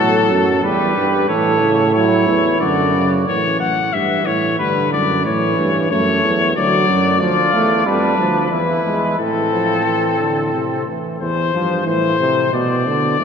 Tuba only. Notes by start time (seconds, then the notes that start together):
Already playing: A2
0.31 F#2
0.64 E2
0.97 G2
1.30 A2
2.28 E2
2.61 F#2
3.28 A2
3.61 A2
3.94 G2
4.27 A2
4.59 G2
4.93 F#2
5.25 A2
5.59 G2
5.91 F#2
6.24 E2
6.57 D2
6.89 F#2
7.21 D2
7.54 E2
7.86 F2
8.19 D2
8.52 E2
8.85 E2
9.19 A2
11.21 E2
11.54 G2
11.87 A2
12.54 B2
13.20 G#2